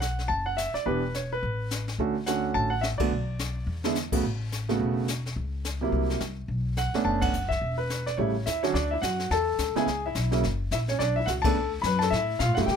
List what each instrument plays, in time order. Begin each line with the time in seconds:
Already playing: upright bass B1
0.00 grand piano F#5, snare, hi-hat pedal
0.19 snare
0.28 upright bass F#1, grand piano A5, brush sweep, kick
0.46 grand piano F#5
0.57 grand piano E5, snare, hi-hat pedal
0.74 grand piano D5, muted upright bass stroke, snare
0.86 upright bass E1, grand piano E3 B3 D4 G4 B4, brush sweep, kick
1.14 grand piano C#5, snare, hi-hat pedal
1.33 grand piano B4
1.43 upright bass A1, brush sweep, kick
1.71 snare, hi-hat pedal
1.88 snare
1.98 upright bass D2, grand piano D3 A3 C#4 F#4, brush sweep, kick
2.26 grand piano D3 A3 C#4 F#4 F#5, snare, hi-hat pedal
2.54 upright bass A1, grand piano A5, brush sweep, kick
2.70 grand piano F#5
2.81 grand piano E5, snare, hi-hat pedal
2.98 grand piano D3 A3 B3 F#4 D5, muted upright bass stroke, kick, ride
3.10 upright bass B1, brush sweep
3.39 snare, hi-hat pedal
3.66 upright bass E2
3.84 grand piano D3 G#3 B3 E4, snare
3.95 snare, hi-hat pedal
4.12 grand piano C#3 A3 B3 F#4, kick, crash
4.23 upright bass A1, brush sweep, kick
4.52 snare, hi-hat pedal
4.69 grand piano C#3 A3 B3 F#4, snare
4.79 upright bass E1, brush sweep, kick
5.08 snare, hi-hat pedal
5.26 snare
5.36 upright bass C#2, brush sweep, kick
5.65 snare, hi-hat pedal
5.81 grand piano C3 F#3 A#3 E4
5.92 upright bass C2, brush sweep, kick
6.10 snare
6.20 upright bass C2, snare, hi-hat pedal
6.48 upright bass B1, brush sweep, kick
6.77 grand piano F#5, snare, hi-hat pedal
6.93 grand piano A3 B3 C#4 D4, muted upright bass stroke, snare
7.05 upright bass F#1, grand piano A5, brush sweep, kick
7.21 grand piano F#5, kick, ride
7.33 upright bass F#1, hi-hat pedal
7.49 grand piano E5, kick, snare
7.61 upright bass E1, brush sweep, kick
7.78 grand piano B4
7.90 snare, hi-hat pedal
8.06 grand piano D5, snare
8.17 upright bass A1, grand piano C#3 G3 A3 E4 C#5, brush sweep, kick
8.46 upright bass D#2, grand piano E4 E5, snare, hi-hat pedal
8.63 grand piano D3 F#3 C#4 F#4 C#5, snare
8.74 upright bass D2, grand piano D4 D5, brush sweep, kick, snare
8.91 grand piano E4 E5
9.02 upright bass F#2, grand piano F#4 F#5, kick, snare, hi-hat pedal
9.19 snare
9.31 upright bass E2, grand piano A4 A5, brush sweep, kick, snare
9.58 upright bass D2, kick, snare, hi-hat pedal
9.75 grand piano C#3 G#3 B3 E4 G#4 G#5, muted upright bass stroke, snare
9.86 upright bass C#2, brush sweep, kick, snare
10.06 grand piano E4 E5
10.15 upright bass B1, kick, snare, hi-hat pedal
10.31 grand piano C#3 F#3 A#3 E4, snare
10.43 upright bass F#1, brush sweep, kick, snare
10.71 upright bass A#1, grand piano E4 E5, kick, snare, hi-hat pedal
10.88 grand piano C#4 C#5, snare
10.99 upright bass B1, grand piano D4 D5, brush sweep, kick, snare
11.16 grand piano E4 E5
11.26 upright bass C#2, grand piano F#4 F#5, kick, snare, hi-hat pedal
11.42 grand piano C#3 A3 B3 D4 A5, kick, ride
11.46 grand piano A4
11.55 upright bass D2, brush sweep
11.82 upright bass F#2, grand piano B5, kick, snare, hi-hat pedal
11.86 grand piano B4
11.99 grand piano A4 A5, snare
12.10 upright bass A2, grand piano E5, brush sweep, kick, snare
12.16 grand piano E4
12.39 upright bass B2, grand piano F5, kick, snare, hi-hat pedal
12.43 grand piano F4
12.48 upright bass A2
12.55 upright bass G2, grand piano C#3 G3 A3 E4 F#5, snare
12.59 grand piano F#4
12.66 upright bass C#3, grand piano G5, brush sweep, kick, snare
12.71 grand piano G4